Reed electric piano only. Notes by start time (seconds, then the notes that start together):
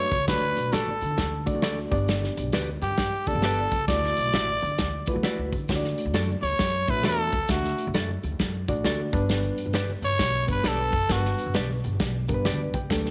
Already playing: A3 D4 F#4 B4
0.28 A3 D4 F#4 D5
1.46 A3 D4 F#4 D5
1.91 B3 D4 G4 D5
3.27 A3 D4 G4 D5
3.33 B3
3.89 A3 E4 F#4 D5
5.07 A3 E4 F4 B4
5.13 F#4
5.69 A3 D4 F#4 C#5
5.75 D5
6.88 A3 D4 E4 E5
6.94 F#4
7.49 A3 D4 F#4 E5
8.68 A3 D4 F#4 D5
9.13 G3 B3 D4 B4
10.47 G3 B3 D4 B4
11.09 G3 B3 D4 A#4
11.15 B4
12.29 G3 B3 D4 A#4
12.34 B4
12.45 D5
12.74 G5
12.90 F#3 A3 D4 A4